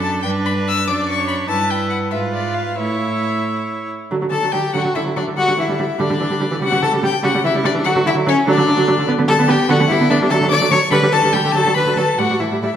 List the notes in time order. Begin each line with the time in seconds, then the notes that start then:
Already playing: F#2 D4 A4
0.02 A5
0.22 G2 D4 B4 G5
0.46 B5
0.68 E6
0.87 F#2 D4 D5 D6
1.09 C#6
1.19 C#5
1.28 B5
1.48 G2 E4 B4 A5
1.70 G5
1.89 F#5
2.11 G#2 F4 B4 E5
2.33 D5
2.54 F5
2.76 A2 E4 C#5 E5
4.11 D3 F#3
4.22 D3 F#3
4.31 D3 A4 A5
4.43 D3 F#3
4.52 D3 F#3 G4 G5
4.73 D3 F#3 F#4 F#5
4.84 D3 F#3
4.95 D3 E4 E5
5.05 D3 F#3
5.16 D3 F#3 D4 D5
5.27 D3
5.37 D3 G3 F#4 F#5
5.48 D3 G3
5.58 D3 E3 E4 E5
5.68 D3 G3
5.79 D3 G3
5.99 D3 G3 D4 D5
6.10 D3 G3
6.20 D3 E3
6.30 D3 G3
6.40 D3 G3
6.51 D3 E3
6.61 C#3 G3 F#4 F#5
6.72 C#3 G3
6.82 C#3 E3 A4 A5
6.92 C#3 G3
7.03 C#3 G3 G4 G5
7.23 C#3 G3 F#4 F#5
7.35 C#3 G3
7.44 C#3 E3 E4 E5
7.54 C#3 G3
7.64 C#3 G3 D4 D5
7.75 C#3 E3
7.85 D3 F#3 F#4 F#5
7.95 D3 F#3
8.05 D3 E4 E5
8.15 D3 F#3
8.27 D3 F#3 C#4 C#5
8.47 D3 F#3 D4 D5
8.58 D3 F#3
8.68 D3
8.77 D3 F#3
8.88 D3 F#3
8.98 D3
9.08 D3 B3
9.18 D3 B3
9.28 D3 G3 A4 A5
9.38 D3 B3
9.48 D3 B3 G4 G5
9.69 D3 B3 F#4 F#5
9.80 D3 B3
9.88 D3 G3 E4
9.92 E5
10.00 D3 B3
10.10 D3 B3 D4 D5
10.20 D3 G3
10.30 D3 F#3 A4 A5
10.41 D3 F#3
10.50 D3 D5 D6
10.60 D3 F#3
10.71 D3 F#3 C#5 C#6
10.91 D3 G3 B4 B5
11.02 D3 G3
11.12 D3 A4 A5
11.23 D3 G3
11.33 D3 G3 G4 G5
11.44 D3
11.52 D3 A5
11.56 F#3 A4
11.64 D3 F#3
11.74 D3 B4 B5
11.85 D3 F#3
11.96 D3 F#3 A4 A5
12.18 A2 G3 F#4 F#5
12.29 A2 G3
12.39 A2 E3 E4 E5
12.50 A2 G3
12.62 A2 G3 E4 E5
12.73 A2